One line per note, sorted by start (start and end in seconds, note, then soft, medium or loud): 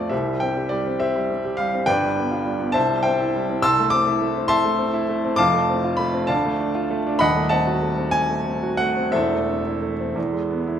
0.00 0.14 F2 medium
0.00 0.14 A3 medium
0.00 0.14 C4 soft
0.00 0.14 F4 medium
0.00 0.11 D5 medium
0.00 0.14 A5 medium
0.09 1.85 C2 medium
0.09 0.39 G4 medium
0.09 0.39 C5 medium
0.09 0.41 E5 medium
0.27 0.51 G3 soft
0.40 0.66 C4 medium
0.40 0.71 G5 medium
0.57 0.81 G4 soft
0.69 0.95 G3 soft
0.69 1.00 D5 medium
0.87 1.29 C4 medium
1.00 1.44 G4 medium
1.00 1.55 C5 medium
1.00 1.58 E5 medium
1.16 1.39 G3 soft
1.30 1.53 C4 soft
1.45 1.68 G4 medium
1.57 1.83 G3 medium
1.57 1.87 F5 loud
1.74 1.89 C4 medium
1.86 2.72 G1 medium
1.86 2.73 G2 medium
1.86 2.71 B4 medium
1.86 2.71 D5 medium
1.86 2.74 G5 loud
2.03 2.26 G3 medium
2.17 2.40 B3 medium
2.31 2.55 F4 medium
2.46 2.69 G3 soft
2.60 2.75 B3 medium
2.72 3.61 C2 medium
2.72 3.02 C5 medium
2.72 3.02 E5 medium
2.72 3.04 A5 loud
2.90 3.14 G3 medium
3.03 3.29 C4 medium
3.03 3.58 C5 medium
3.03 3.59 E5 medium
3.03 3.62 G5 medium
3.20 3.43 E4 medium
3.36 3.58 G3 medium
3.50 3.64 C4 medium
3.62 5.34 C2 medium
3.62 3.90 A5 medium
3.62 3.90 C6 medium
3.62 3.91 E6 loud
3.79 4.01 A3 medium
3.90 4.15 C4 medium
3.90 4.48 D6 loud
4.07 4.29 E4 medium
4.22 4.44 A3 medium
4.37 4.77 C4 medium
4.48 5.34 E5 medium
4.48 5.34 A5 medium
4.48 5.37 C6 loud
4.65 4.88 A3 medium
4.78 5.02 C4 medium
4.94 5.17 E4 medium
5.09 5.32 A3 medium
5.25 5.39 C4 medium
5.36 6.26 F1 medium
5.36 6.27 F2 medium
5.36 5.95 F5 medium
5.36 5.95 A5 medium
5.36 5.98 D6 loud
5.54 5.78 A3 medium
5.70 5.93 C4 medium
5.85 6.08 F4 medium
5.97 6.23 A3 medium
5.97 6.28 B5 loud
6.14 6.29 C4 medium
6.27 7.18 D2 medium
6.27 6.57 D5 medium
6.27 6.57 F5 medium
6.27 6.58 A5 medium
6.45 6.69 A3 medium
6.61 6.84 D4 medium
6.75 6.99 F4 medium
6.90 7.14 A3 medium
7.07 7.21 D4 medium
7.19 9.11 D#1 medium
7.19 9.11 D#2 medium
7.19 7.49 D#5 medium
7.19 7.49 F#5 medium
7.19 7.50 B5 loud
7.36 7.60 A3 medium
7.49 7.76 C4 medium
7.49 8.09 D#5 medium
7.49 8.09 F#5 medium
7.49 8.13 A5 loud
7.67 7.91 F#4 medium
7.82 8.07 A3 medium
7.97 8.44 C4 medium
8.11 8.79 G#5 loud
8.30 8.56 A3 medium
8.45 8.73 C4 medium
8.63 8.90 F#4 medium
8.77 9.07 A3 medium
8.77 9.13 F#5 loud
8.97 9.14 C4 medium
9.12 10.13 E1 medium
9.12 10.13 E2 medium
9.12 10.80 A4 medium
9.12 10.80 C5 medium
9.12 10.80 E5 medium
9.32 9.59 A3 soft
9.49 9.76 C4 soft
9.66 9.93 E4 soft
9.82 10.10 A3 soft
10.00 10.17 C4 medium
10.16 10.80 E2 medium
10.33 10.61 G#3 medium
10.50 10.78 B3 soft
10.68 10.80 E4 medium